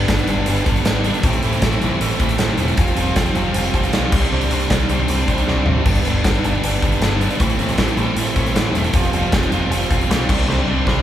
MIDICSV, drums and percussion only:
0, 0, Header, 1, 2, 480
1, 0, Start_track
1, 0, Tempo, 384862
1, 1552, Time_signature, 4, 2, 24, 8
1, 13745, End_track
2, 0, Start_track
2, 0, Title_t, "Drums"
2, 102, Note_on_c, 9, 42, 108
2, 104, Note_on_c, 9, 36, 85
2, 110, Note_on_c, 9, 38, 115
2, 222, Note_off_c, 9, 42, 0
2, 222, Note_on_c, 9, 42, 47
2, 228, Note_off_c, 9, 36, 0
2, 234, Note_off_c, 9, 38, 0
2, 343, Note_off_c, 9, 42, 0
2, 343, Note_on_c, 9, 42, 78
2, 468, Note_off_c, 9, 42, 0
2, 574, Note_on_c, 9, 42, 101
2, 699, Note_off_c, 9, 42, 0
2, 702, Note_on_c, 9, 42, 47
2, 826, Note_on_c, 9, 36, 92
2, 827, Note_off_c, 9, 42, 0
2, 828, Note_on_c, 9, 42, 78
2, 947, Note_off_c, 9, 42, 0
2, 947, Note_on_c, 9, 42, 53
2, 950, Note_off_c, 9, 36, 0
2, 1061, Note_off_c, 9, 42, 0
2, 1061, Note_on_c, 9, 42, 110
2, 1068, Note_on_c, 9, 38, 119
2, 1185, Note_off_c, 9, 42, 0
2, 1193, Note_off_c, 9, 38, 0
2, 1300, Note_on_c, 9, 42, 84
2, 1422, Note_off_c, 9, 42, 0
2, 1422, Note_on_c, 9, 42, 47
2, 1538, Note_off_c, 9, 42, 0
2, 1538, Note_on_c, 9, 42, 100
2, 1541, Note_on_c, 9, 36, 115
2, 1656, Note_off_c, 9, 42, 0
2, 1656, Note_on_c, 9, 42, 52
2, 1666, Note_off_c, 9, 36, 0
2, 1778, Note_off_c, 9, 42, 0
2, 1778, Note_on_c, 9, 42, 83
2, 1903, Note_off_c, 9, 42, 0
2, 1903, Note_on_c, 9, 42, 51
2, 2018, Note_off_c, 9, 42, 0
2, 2018, Note_on_c, 9, 42, 115
2, 2022, Note_on_c, 9, 36, 86
2, 2026, Note_on_c, 9, 38, 108
2, 2143, Note_off_c, 9, 42, 0
2, 2146, Note_off_c, 9, 36, 0
2, 2148, Note_on_c, 9, 42, 51
2, 2150, Note_off_c, 9, 38, 0
2, 2263, Note_off_c, 9, 42, 0
2, 2263, Note_on_c, 9, 42, 80
2, 2388, Note_off_c, 9, 42, 0
2, 2505, Note_on_c, 9, 42, 120
2, 2629, Note_off_c, 9, 42, 0
2, 2629, Note_on_c, 9, 42, 50
2, 2738, Note_off_c, 9, 42, 0
2, 2738, Note_on_c, 9, 42, 82
2, 2742, Note_on_c, 9, 36, 93
2, 2856, Note_off_c, 9, 42, 0
2, 2856, Note_on_c, 9, 42, 56
2, 2867, Note_off_c, 9, 36, 0
2, 2973, Note_off_c, 9, 42, 0
2, 2973, Note_on_c, 9, 42, 118
2, 2980, Note_on_c, 9, 38, 109
2, 3098, Note_off_c, 9, 42, 0
2, 3105, Note_off_c, 9, 38, 0
2, 3213, Note_on_c, 9, 42, 82
2, 3337, Note_off_c, 9, 42, 0
2, 3342, Note_on_c, 9, 42, 52
2, 3459, Note_off_c, 9, 42, 0
2, 3459, Note_on_c, 9, 42, 103
2, 3463, Note_on_c, 9, 36, 111
2, 3583, Note_off_c, 9, 42, 0
2, 3586, Note_on_c, 9, 42, 55
2, 3588, Note_off_c, 9, 36, 0
2, 3699, Note_off_c, 9, 42, 0
2, 3699, Note_on_c, 9, 42, 87
2, 3824, Note_off_c, 9, 42, 0
2, 3939, Note_on_c, 9, 42, 101
2, 3943, Note_on_c, 9, 36, 86
2, 3946, Note_on_c, 9, 38, 113
2, 4064, Note_off_c, 9, 42, 0
2, 4064, Note_on_c, 9, 42, 51
2, 4068, Note_off_c, 9, 36, 0
2, 4071, Note_off_c, 9, 38, 0
2, 4182, Note_off_c, 9, 42, 0
2, 4182, Note_on_c, 9, 42, 79
2, 4307, Note_off_c, 9, 42, 0
2, 4419, Note_on_c, 9, 42, 111
2, 4543, Note_off_c, 9, 42, 0
2, 4545, Note_on_c, 9, 42, 45
2, 4662, Note_off_c, 9, 42, 0
2, 4662, Note_on_c, 9, 42, 73
2, 4664, Note_on_c, 9, 36, 86
2, 4782, Note_off_c, 9, 42, 0
2, 4782, Note_on_c, 9, 42, 49
2, 4788, Note_off_c, 9, 36, 0
2, 4789, Note_on_c, 9, 38, 37
2, 4900, Note_off_c, 9, 42, 0
2, 4900, Note_on_c, 9, 42, 101
2, 4908, Note_off_c, 9, 38, 0
2, 4908, Note_on_c, 9, 38, 122
2, 5025, Note_off_c, 9, 42, 0
2, 5033, Note_off_c, 9, 38, 0
2, 5140, Note_on_c, 9, 49, 115
2, 5144, Note_on_c, 9, 36, 118
2, 5265, Note_off_c, 9, 49, 0
2, 5268, Note_off_c, 9, 36, 0
2, 5503, Note_on_c, 9, 42, 54
2, 5621, Note_off_c, 9, 42, 0
2, 5621, Note_on_c, 9, 42, 81
2, 5740, Note_off_c, 9, 42, 0
2, 5740, Note_on_c, 9, 42, 54
2, 5864, Note_off_c, 9, 42, 0
2, 5864, Note_on_c, 9, 42, 111
2, 5866, Note_on_c, 9, 36, 95
2, 5871, Note_on_c, 9, 38, 116
2, 5986, Note_off_c, 9, 42, 0
2, 5986, Note_on_c, 9, 42, 54
2, 5991, Note_off_c, 9, 36, 0
2, 5996, Note_off_c, 9, 38, 0
2, 6103, Note_off_c, 9, 42, 0
2, 6103, Note_on_c, 9, 42, 85
2, 6227, Note_off_c, 9, 42, 0
2, 6339, Note_on_c, 9, 42, 118
2, 6464, Note_off_c, 9, 42, 0
2, 6467, Note_on_c, 9, 42, 50
2, 6585, Note_on_c, 9, 36, 87
2, 6586, Note_off_c, 9, 42, 0
2, 6586, Note_on_c, 9, 42, 80
2, 6708, Note_off_c, 9, 42, 0
2, 6708, Note_on_c, 9, 42, 58
2, 6710, Note_off_c, 9, 36, 0
2, 6831, Note_on_c, 9, 38, 67
2, 6833, Note_off_c, 9, 42, 0
2, 6956, Note_off_c, 9, 38, 0
2, 7058, Note_on_c, 9, 43, 94
2, 7182, Note_off_c, 9, 43, 0
2, 7302, Note_on_c, 9, 57, 103
2, 7306, Note_on_c, 9, 36, 113
2, 7424, Note_on_c, 9, 42, 55
2, 7427, Note_off_c, 9, 57, 0
2, 7431, Note_off_c, 9, 36, 0
2, 7545, Note_off_c, 9, 42, 0
2, 7545, Note_on_c, 9, 42, 86
2, 7670, Note_off_c, 9, 42, 0
2, 7788, Note_on_c, 9, 36, 93
2, 7788, Note_on_c, 9, 42, 111
2, 7795, Note_on_c, 9, 38, 117
2, 7909, Note_off_c, 9, 42, 0
2, 7909, Note_on_c, 9, 42, 49
2, 7913, Note_off_c, 9, 36, 0
2, 7920, Note_off_c, 9, 38, 0
2, 8034, Note_off_c, 9, 42, 0
2, 8036, Note_on_c, 9, 42, 82
2, 8160, Note_off_c, 9, 42, 0
2, 8276, Note_on_c, 9, 42, 112
2, 8401, Note_off_c, 9, 42, 0
2, 8511, Note_on_c, 9, 36, 87
2, 8512, Note_on_c, 9, 42, 78
2, 8631, Note_off_c, 9, 42, 0
2, 8631, Note_on_c, 9, 42, 48
2, 8636, Note_off_c, 9, 36, 0
2, 8752, Note_off_c, 9, 42, 0
2, 8752, Note_on_c, 9, 42, 101
2, 8759, Note_on_c, 9, 38, 111
2, 8876, Note_off_c, 9, 42, 0
2, 8884, Note_off_c, 9, 38, 0
2, 8993, Note_on_c, 9, 42, 79
2, 9110, Note_off_c, 9, 42, 0
2, 9110, Note_on_c, 9, 42, 47
2, 9228, Note_off_c, 9, 42, 0
2, 9228, Note_on_c, 9, 42, 97
2, 9230, Note_on_c, 9, 36, 104
2, 9348, Note_off_c, 9, 42, 0
2, 9348, Note_on_c, 9, 42, 50
2, 9354, Note_off_c, 9, 36, 0
2, 9465, Note_off_c, 9, 42, 0
2, 9465, Note_on_c, 9, 42, 79
2, 9587, Note_off_c, 9, 42, 0
2, 9587, Note_on_c, 9, 42, 52
2, 9701, Note_off_c, 9, 42, 0
2, 9701, Note_on_c, 9, 42, 114
2, 9707, Note_on_c, 9, 36, 87
2, 9708, Note_on_c, 9, 38, 123
2, 9825, Note_off_c, 9, 42, 0
2, 9827, Note_on_c, 9, 42, 51
2, 9832, Note_off_c, 9, 36, 0
2, 9833, Note_off_c, 9, 38, 0
2, 9943, Note_off_c, 9, 42, 0
2, 9943, Note_on_c, 9, 42, 86
2, 10068, Note_off_c, 9, 42, 0
2, 10184, Note_on_c, 9, 42, 120
2, 10308, Note_off_c, 9, 42, 0
2, 10308, Note_on_c, 9, 42, 49
2, 10425, Note_off_c, 9, 42, 0
2, 10425, Note_on_c, 9, 42, 81
2, 10427, Note_on_c, 9, 36, 92
2, 10550, Note_off_c, 9, 42, 0
2, 10552, Note_off_c, 9, 36, 0
2, 10554, Note_on_c, 9, 42, 54
2, 10561, Note_on_c, 9, 38, 38
2, 10673, Note_off_c, 9, 42, 0
2, 10673, Note_on_c, 9, 42, 110
2, 10680, Note_off_c, 9, 38, 0
2, 10680, Note_on_c, 9, 38, 117
2, 10798, Note_off_c, 9, 42, 0
2, 10805, Note_off_c, 9, 38, 0
2, 10914, Note_on_c, 9, 42, 87
2, 11029, Note_off_c, 9, 42, 0
2, 11029, Note_on_c, 9, 42, 54
2, 11142, Note_off_c, 9, 42, 0
2, 11142, Note_on_c, 9, 42, 109
2, 11146, Note_on_c, 9, 36, 107
2, 11266, Note_off_c, 9, 42, 0
2, 11266, Note_on_c, 9, 42, 58
2, 11271, Note_off_c, 9, 36, 0
2, 11389, Note_off_c, 9, 42, 0
2, 11389, Note_on_c, 9, 42, 85
2, 11513, Note_off_c, 9, 42, 0
2, 11628, Note_on_c, 9, 42, 117
2, 11629, Note_on_c, 9, 36, 89
2, 11635, Note_on_c, 9, 38, 115
2, 11752, Note_off_c, 9, 42, 0
2, 11754, Note_off_c, 9, 36, 0
2, 11757, Note_on_c, 9, 42, 52
2, 11760, Note_off_c, 9, 38, 0
2, 11874, Note_off_c, 9, 42, 0
2, 11874, Note_on_c, 9, 42, 85
2, 11999, Note_off_c, 9, 42, 0
2, 12119, Note_on_c, 9, 42, 112
2, 12244, Note_off_c, 9, 42, 0
2, 12244, Note_on_c, 9, 42, 51
2, 12355, Note_on_c, 9, 36, 90
2, 12359, Note_off_c, 9, 42, 0
2, 12359, Note_on_c, 9, 42, 76
2, 12480, Note_off_c, 9, 36, 0
2, 12484, Note_off_c, 9, 42, 0
2, 12486, Note_on_c, 9, 42, 52
2, 12607, Note_off_c, 9, 42, 0
2, 12607, Note_on_c, 9, 42, 107
2, 12614, Note_on_c, 9, 38, 117
2, 12731, Note_off_c, 9, 42, 0
2, 12739, Note_off_c, 9, 38, 0
2, 12836, Note_on_c, 9, 36, 107
2, 12842, Note_on_c, 9, 49, 103
2, 12961, Note_off_c, 9, 36, 0
2, 12967, Note_off_c, 9, 49, 0
2, 13094, Note_on_c, 9, 38, 69
2, 13218, Note_off_c, 9, 38, 0
2, 13555, Note_on_c, 9, 36, 89
2, 13569, Note_on_c, 9, 38, 87
2, 13680, Note_off_c, 9, 36, 0
2, 13694, Note_off_c, 9, 38, 0
2, 13745, End_track
0, 0, End_of_file